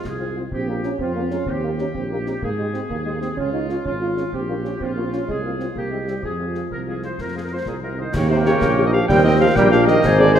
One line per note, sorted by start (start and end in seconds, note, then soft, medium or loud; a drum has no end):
0.04 0.44 C2 soft
0.04 0.39 G#4 soft
0.04 concert bass drum soft
0.04 snare soft
0.20 0.26 G#3 soft
0.20 0.26 C4 soft
0.20 0.26 F4 soft
0.20 0.27 C5 soft
0.36 0.42 G#3 soft
0.36 0.42 C4 soft
0.36 0.42 F4 soft
0.36 0.42 C5 soft
0.52 0.92 A#1 medium
0.52 0.69 C4 medium
0.52 0.97 G4 soft
0.52 concert bass drum soft
0.68 0.74 G#3 soft
0.68 0.83 A#3 medium
0.68 0.74 C#4 soft
0.68 0.74 F4 soft
0.68 0.74 A#4 soft
0.83 0.90 G#3 soft
0.83 0.99 C#4 medium
0.83 0.90 C#4 soft
0.83 0.89 F4 soft
0.83 0.90 A#4 soft
0.83 snare soft
0.99 1.40 F2 soft
0.99 1.15 C4 medium
0.99 1.48 F4 soft
0.99 concert bass drum soft
1.15 1.21 G#3 soft
1.15 1.24 A#3 medium
1.15 1.21 C#4 soft
1.15 1.21 F4 soft
1.15 1.21 A#4 soft
1.23 1.30 C4 soft
1.31 1.37 G#3 soft
1.31 1.49 C#4 medium
1.31 1.38 C#4 soft
1.31 1.38 F4 soft
1.31 1.38 A#4 soft
1.31 snare soft
1.46 1.87 D#2 medium
1.46 1.63 C4 medium
1.46 2.43 G4 medium
1.46 concert bass drum soft
1.63 1.69 G3 soft
1.63 1.71 A#3 medium
1.63 1.69 D#4 soft
1.63 1.69 G4 soft
1.63 1.70 A#4 soft
1.78 1.85 G3 soft
1.78 1.87 C#4 medium
1.78 1.85 D#4 soft
1.78 1.85 G4 soft
1.78 1.85 A#4 soft
1.78 snare soft
1.94 2.35 A#1 soft
1.94 2.02 C4 medium
1.94 concert bass drum soft
2.11 2.17 G3 soft
2.11 2.18 A#3 medium
2.11 2.17 D#4 soft
2.11 2.17 G4 soft
2.11 2.17 A#4 soft
2.26 2.32 G3 soft
2.26 2.34 C4 medium
2.26 2.32 D#4 soft
2.26 2.32 G4 soft
2.26 2.33 A#4 soft
2.26 snare soft
2.42 2.82 G#2 medium
2.42 2.50 A#3 medium
2.42 3.34 G#4 medium
2.42 concert bass drum medium
2.58 2.66 G#3 medium
2.58 2.64 G#3 soft
2.58 2.64 D#4 soft
2.58 2.64 G4 soft
2.58 2.65 C5 soft
2.74 2.80 G#3 soft
2.74 2.81 C4 medium
2.74 2.80 D#4 soft
2.74 2.80 G4 soft
2.74 2.80 C5 soft
2.74 snare soft
2.89 3.30 D#2 soft
2.89 2.97 A#3 medium
2.89 concert bass drum soft
3.05 3.11 G#3 soft
3.05 3.09 G#3 medium
3.05 3.11 D#4 soft
3.05 3.11 G4 soft
3.05 3.12 C5 soft
3.14 3.18 A#3 medium
3.21 3.28 G#3 soft
3.21 3.28 C4 medium
3.21 3.28 D#4 soft
3.21 3.28 G4 soft
3.21 3.28 C5 soft
3.21 snare soft
3.37 3.78 C#2 soft
3.37 3.52 C#4 medium
3.37 3.84 F4 soft
3.37 concert bass drum soft
3.53 3.60 G#3 soft
3.53 3.60 C#4 soft
3.53 3.68 D#4 medium
3.53 3.60 F4 soft
3.53 3.60 C#5 soft
3.69 3.75 G#3 soft
3.69 3.75 C#4 soft
3.69 3.75 F4 soft
3.69 3.77 F4 medium
3.69 3.76 C#5 soft
3.69 snare soft
3.85 4.26 G#1 soft
3.85 3.92 C#4 medium
3.85 4.30 F4 soft
3.85 concert bass drum soft
4.01 4.07 G#3 soft
4.01 4.07 C#4 soft
4.01 4.16 F4 medium
4.01 4.07 F4 soft
4.01 4.08 C#5 soft
4.17 4.23 G#3 soft
4.17 4.23 C#4 soft
4.17 4.24 C#4 medium
4.17 4.23 F4 soft
4.17 4.23 C#5 soft
4.17 snare soft
4.33 4.73 A#1 soft
4.33 4.40 C4 medium
4.33 4.81 G4 soft
4.33 concert bass drum soft
4.48 4.54 G3 soft
4.48 4.56 A#3 medium
4.48 4.54 C#4 soft
4.48 4.54 F4 soft
4.48 4.55 C#5 soft
4.64 4.71 G3 soft
4.64 4.72 C#4 medium
4.64 4.71 C#4 soft
4.64 4.71 F4 soft
4.64 4.70 C#5 soft
4.64 snare soft
4.80 5.20 A#1 soft
4.80 4.95 C4 medium
4.80 5.29 F4 soft
4.80 concert bass drum soft
4.96 5.03 G3 soft
4.96 5.03 A#3 soft
4.96 5.03 C#4 soft
4.96 5.03 F4 soft
4.96 5.02 C#5 soft
5.03 5.11 C4 soft
5.11 5.18 G3 soft
5.11 5.27 C#4 soft
5.11 5.18 C#4 soft
5.11 5.18 F4 soft
5.11 5.18 C#5 soft
5.11 snare soft
5.27 5.68 C2 soft
5.27 5.44 G#3 soft
5.27 5.73 G#4 soft
5.27 concert bass drum medium
5.43 5.50 G#3 soft
5.43 5.58 A#3 medium
5.43 5.50 C4 soft
5.43 5.50 F4 soft
5.43 5.50 F5 soft
5.58 5.66 G#3 soft
5.58 5.66 C4 soft
5.58 5.66 F4 soft
5.58 5.66 F5 soft
5.58 snare soft
5.76 6.16 C2 soft
5.76 5.92 A#3 medium
5.76 6.21 G4 soft
5.76 concert bass drum soft
5.91 5.98 G3 soft
5.91 6.09 G#3 soft
5.91 5.98 C4 soft
5.91 5.98 G4 soft
5.91 5.98 E5 soft
6.07 6.24 G3 soft
6.07 6.14 G3 soft
6.07 6.14 C4 soft
6.07 6.14 G4 soft
6.07 6.13 E5 soft
6.07 snare soft
6.23 6.63 F2 soft
6.23 7.65 F3 soft
6.23 6.65 G#4 soft
6.23 concert bass drum soft
6.39 6.46 G#3 soft
6.39 6.46 C4 soft
6.39 6.46 F4 soft
6.39 6.45 F5 soft
6.54 6.61 G#3 soft
6.54 6.60 C4 soft
6.54 6.60 F4 soft
6.54 6.61 F5 soft
6.54 snare soft
6.71 7.11 C2 soft
6.71 6.79 A#4 soft
6.71 concert bass drum soft
6.87 6.93 G#3 soft
6.87 6.93 C4 soft
6.87 6.93 F4 soft
6.87 7.02 G#4 soft
6.87 6.93 F5 soft
7.02 7.08 G#3 soft
7.02 7.08 C4 soft
7.02 7.09 F4 soft
7.02 7.18 C5 soft
7.02 7.08 F5 soft
7.02 snare soft
7.18 7.59 F2 soft
7.18 7.34 A#4 soft
7.18 concert bass drum soft
7.18 snare soft
7.35 7.41 G#3 soft
7.35 7.41 C4 soft
7.35 7.41 F4 soft
7.35 7.39 G#4 soft
7.35 7.40 F5 soft
7.43 7.50 A#4 soft
7.51 7.57 G#3 soft
7.51 7.57 C4 soft
7.51 7.57 F4 soft
7.51 7.66 C5 soft
7.51 7.57 F5 soft
7.65 8.06 C2 soft
7.65 7.73 A#2 medium
7.65 7.74 G#4 soft
7.65 7.82 A#4 medium
7.65 concert bass drum soft
7.65 snare soft
7.81 7.97 C3 soft
7.81 7.88 G#3 soft
7.81 7.89 C4 soft
7.81 7.88 F4 soft
7.81 7.97 A#4 soft
7.81 7.96 C5 soft
7.97 8.16 D#3 medium
7.97 8.04 G#3 soft
7.97 8.04 C4 soft
7.97 8.04 F4 soft
7.97 8.14 C5 soft
7.97 8.15 D#5 medium
8.13 8.54 D#2 medium
8.13 8.29 C#3 medium
8.13 9.04 A#3 loud
8.13 8.93 A#4 medium
8.13 8.30 C#5 loud
8.13 8.93 G5 medium
8.13 concert bass drum medium
8.13 snare medium
8.13 crash medium
8.30 8.45 C3 medium
8.30 8.36 A#3 medium
8.30 8.36 D#4 medium
8.30 8.35 G4 medium
8.30 8.37 C5 medium
8.45 8.87 C#3 medium
8.45 8.51 A#3 medium
8.45 8.51 D#4 medium
8.45 8.52 G4 medium
8.45 8.82 C#5 loud
8.45 snare medium
8.61 9.01 A#1 medium
8.61 concert bass drum medium
8.61 snare medium
8.77 8.83 A#3 medium
8.77 8.83 D#4 medium
8.77 8.83 G4 medium
8.86 8.94 D#3 medium
8.86 8.89 D#5 loud
8.93 9.08 F3 medium
8.93 8.99 A#3 medium
8.93 8.98 D#4 medium
8.93 8.98 G4 medium
8.93 9.07 F5 loud
9.08 9.48 D#2 loud
9.08 9.27 G3 loud
9.08 9.54 C4 loud
9.08 9.54 A#4 medium
9.08 9.23 G5 loud
9.08 9.54 G5 medium
9.08 concert bass drum medium
9.08 snare medium
9.24 9.40 D#3 loud
9.24 9.30 A#3 medium
9.24 9.30 D#4 medium
9.24 9.30 G4 medium
9.24 9.39 D#5 loud
9.40 9.48 F3 loud
9.40 9.46 A#3 medium
9.40 9.46 D#4 medium
9.40 9.46 G4 medium
9.40 9.57 F5 loud
9.56 9.96 A#1 loud
9.56 9.71 G3 loud
9.56 10.39 A#3 loud
9.56 10.01 A#4 medium
9.56 9.71 G5 loud
9.56 10.01 G5 medium
9.56 concert bass drum medium
9.56 snare medium
9.71 9.86 F3 loud
9.71 9.77 A#3 medium
9.71 9.77 D#4 medium
9.71 9.77 G4 medium
9.71 9.86 F5 loud
9.71 snare medium
9.87 10.03 D#3 loud
9.87 9.93 A#3 medium
9.87 9.93 D#4 medium
9.87 9.93 G4 medium
9.87 10.21 D#5 loud
9.87 snare medium
10.04 10.39 G#1 loud
10.04 10.39 C5 loud
10.04 10.39 G#5 medium
10.04 concert bass drum medium
10.04 snare medium
10.04 crash soft
10.19 10.27 D3 loud
10.19 10.25 G#3 medium
10.19 10.24 C4 medium
10.19 10.25 G#4 medium
10.19 10.34 D5 loud
10.34 10.39 C3 loud
10.34 10.39 G#3 medium
10.34 10.39 C4 medium
10.34 10.39 G#4 medium
10.34 10.39 C5 loud
10.34 snare medium